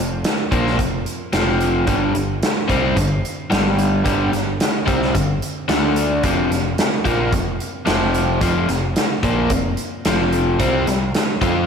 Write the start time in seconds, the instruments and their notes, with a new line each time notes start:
0.00 picked electric bass F1, overdriven electric guitar F2 C3
0.24 snare, closed hi-hat
0.52 picked electric bass A#1, overdriven electric guitar A#2 F3 A#3, kick, closed hi-hat
0.67 snare
0.78 picked electric bass F1, overdriven electric guitar F2 C3, kick, closed hi-hat
1.06 closed hi-hat
1.33 picked electric bass F1, overdriven electric guitar F2 C3 F3, snare, closed hi-hat
1.61 closed hi-hat
1.87 picked electric bass G1, overdriven electric guitar G2 D3 G3, kick, closed hi-hat
2.15 picked electric bass G1, overdriven electric guitar G2 D3, closed hi-hat
2.43 snare, closed hi-hat
2.68 picked electric bass C2, overdriven electric guitar C3 G3 C4, kick, closed hi-hat
2.96 picked electric bass G1, overdriven electric guitar G2 D3, kick, closed hi-hat
3.25 closed hi-hat
3.50 picked electric bass G1, overdriven electric guitar G2 D3 G3, snare, closed hi-hat
3.79 closed hi-hat
4.04 picked electric bass G1, overdriven electric guitar G2 D3 G3, kick, closed hi-hat
4.32 picked electric bass G1, overdriven electric guitar G2 D3, snare, closed hi-hat
4.60 snare, closed hi-hat
4.86 picked electric bass C2, overdriven electric guitar C3 G3 C4, kick, closed hi-hat
5.02 snare
5.14 picked electric bass G1, overdriven electric guitar G2 D3, kick, closed hi-hat
5.42 closed hi-hat
5.68 picked electric bass D2, overdriven electric guitar D3 A3 D4, snare, closed hi-hat
5.96 closed hi-hat
6.23 picked electric bass F1, overdriven electric guitar F2 C3 F3, kick, closed hi-hat
6.51 picked electric bass F1, overdriven electric guitar F2 C3, snare, closed hi-hat
6.78 snare, closed hi-hat
7.05 picked electric bass A#1, overdriven electric guitar A#2 F3 A#3, kick, closed hi-hat
7.32 picked electric bass F1, overdriven electric guitar F2 C3, kick, closed hi-hat
7.60 closed hi-hat
7.86 picked electric bass F1, overdriven electric guitar F2 C3 F3, snare, closed hi-hat
8.14 closed hi-hat
8.41 picked electric bass F1, overdriven electric guitar F2 C3 F3, kick, closed hi-hat
8.68 picked electric bass F1, overdriven electric guitar F2 C3, snare, closed hi-hat
8.96 snare, closed hi-hat
9.23 picked electric bass A#1, overdriven electric guitar A#2 F3 A#3, kick, closed hi-hat
9.50 picked electric bass F1, overdriven electric guitar F2 C3, kick, closed hi-hat
9.77 closed hi-hat
10.05 picked electric bass F1, overdriven electric guitar F2 C3 F3, snare, closed hi-hat
10.32 closed hi-hat
10.60 picked electric bass C2, overdriven electric guitar C3 G3 C4, kick, closed hi-hat
10.87 picked electric bass C2, overdriven electric guitar C3 G3, snare, closed hi-hat
11.14 snare, closed hi-hat
11.41 picked electric bass F2, overdriven electric guitar F3 C4 F4, kick, closed hi-hat